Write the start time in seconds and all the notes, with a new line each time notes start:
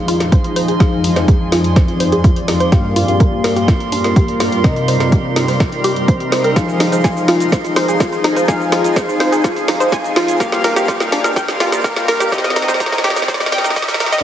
Already playing: F2 F3 D#4 G#4 F5 C6
0.08 F4, open hi-hat
0.20 snare, closed hi-hat
0.32 C5, kick, closed hi-hat
0.44 closed hi-hat
0.56 C5, open hi-hat
0.68 G#4, closed hi-hat
0.80 F3 D#4 F4 G#4 D5 F5, kick, snare, closed hi-hat
1.04 D#4, open hi-hat
1.16 F3 D#4 G#4 C5 F5, snare, closed hi-hat
1.28 G#4, kick, closed hi-hat
1.52 F4, snare, open hi-hat
1.64 closed hi-hat
1.76 C5, kick, snare, closed hi-hat
1.88 closed hi-hat
2.00 C5, open hi-hat
2.12 G#4, closed hi-hat
2.24 F4, kick, closed hi-hat
2.36 closed hi-hat
2.48 D#4, snare, open hi-hat
2.60 C5, closed hi-hat
2.72 G2 G3 A#3 F4 G4 A#4 F5, kick, snare, closed hi-hat
2.96 F4, open hi-hat
3.08 G2 A#3 G4 F5, closed hi-hat
3.20 A#4, kick, closed hi-hat
3.44 A#4, snare, open hi-hat
3.56 G4, closed hi-hat
3.68 F4, kick, snare, closed hi-hat
3.80 closed hi-hat
3.92 D4, open hi-hat
4.04 A#4, snare, closed hi-hat
4.16 G4, kick, closed hi-hat
4.28 closed hi-hat
4.40 F4, snare, open hi-hat
4.52 closed hi-hat
4.64 C3 C4 D#4 A#4 C5 D#5, kick, snare, closed hi-hat
4.76 closed hi-hat
4.88 C5, open hi-hat
5.00 C3 C4 A#4 D#5, snare, closed hi-hat
5.12 G4, kick, closed hi-hat
5.36 D#4, snare, open hi-hat
5.48 C5, open hi-hat
5.60 A#4, kick, snare, closed hi-hat
5.72 closed hi-hat
5.84 G4, open hi-hat
5.96 closed hi-hat
6.08 C5, kick, closed hi-hat
6.20 closed hi-hat
6.32 C5, snare, open hi-hat
6.44 A#4, closed hi-hat
6.56 F2 F3 D#4 F4 G#4 F5, kick, snare, closed hi-hat, riser, cabasa
6.69 cabasa
6.80 D#4, snare, open hi-hat
6.92 F3 D#4 G#4 C5 F5, closed hi-hat, cabasa
7.04 G#5, kick, snare, closed hi-hat, cabasa
7.17 cabasa
7.28 F4, snare, open hi-hat
7.40 closed hi-hat, cabasa
7.52 C5, kick, snare, closed hi-hat, cabasa
7.64 closed hi-hat, cabasa
7.76 C5, snare, open hi-hat
7.88 G#4, closed hi-hat, cabasa
8.00 F4, kick, snare, closed hi-hat, cabasa
8.12 closed hi-hat, cabasa
8.24 D#4, snare, open hi-hat
8.36 C5, closed hi-hat, cabasa
8.48 F3 D#4 G#4 F5 G#5, kick, snare, closed hi-hat, cabasa
8.61 cabasa
8.72 F4, snare, open hi-hat
8.84 F3 D#4 G#4 F5, closed hi-hat, cabasa
8.96 C5, kick, snare, closed hi-hat, cabasa
9.09 cabasa
9.20 C5, snare, open hi-hat
9.32 G#4, closed hi-hat, cabasa
9.44 F4, kick, snare, closed hi-hat, cabasa
9.56 closed hi-hat, cabasa
9.68 D#4, snare, open hi-hat
9.80 C5, closed hi-hat, cabasa
9.92 G#5, kick, snare, closed hi-hat, cabasa
10.04 closed hi-hat, cabasa
10.16 F4, snare, open hi-hat
10.28 closed hi-hat, cabasa
10.40 G2 G3 A#3 F4 G4 A#4 F5, kick, snare, closed hi-hat, cabasa
10.52 snare, cabasa
10.64 A#4, snare, open hi-hat
10.76 G2 A#3 G4 F5, snare, closed hi-hat, cabasa
10.88 F4, kick, snare, closed hi-hat, cabasa
11.00 snare, cabasa
11.12 D4, snare, open hi-hat
11.24 A#4, snare, closed hi-hat, cabasa
11.36 G5, kick, snare, closed hi-hat, cabasa
11.48 snare, closed hi-hat, cabasa
11.60 F4, snare, open hi-hat
11.72 snare, closed hi-hat, cabasa
11.84 A#4, kick, snare, closed hi-hat, cabasa
11.96 snare, closed hi-hat, cabasa
12.08 A#4, snare, open hi-hat
12.20 G4, snare, closed hi-hat, cabasa
12.32 C3 C4 D#4 G4 A#4 D#5, kick, snare, closed hi-hat, cabasa
12.38 snare
12.44 snare, closed hi-hat, cabasa
12.50 snare
12.56 D#4, snare, open hi-hat
12.62 snare
12.68 C3 C4 A#4 C5 D#5, snare, closed hi-hat, cabasa
12.74 snare
12.80 A#5, kick, snare, closed hi-hat, cabasa
12.86 snare
12.92 snare, cabasa
12.98 snare
13.04 G4, snare, open hi-hat
13.10 snare
13.16 snare, open hi-hat, cabasa
13.22 snare
13.28 C5, kick, snare, closed hi-hat, cabasa
13.34 snare
13.40 snare, closed hi-hat, cabasa
13.46 snare
13.52 G5, snare, open hi-hat
13.58 snare
13.64 D#4, snare, closed hi-hat, cabasa
13.70 snare
13.76 D#5, kick, snare, closed hi-hat, cabasa
13.82 snare
13.88 snare, closed hi-hat, cabasa
13.94 snare
14.00 A#4, snare, open hi-hat
14.06 snare
14.12 D#5, snare, closed hi-hat, cabasa
14.18 snare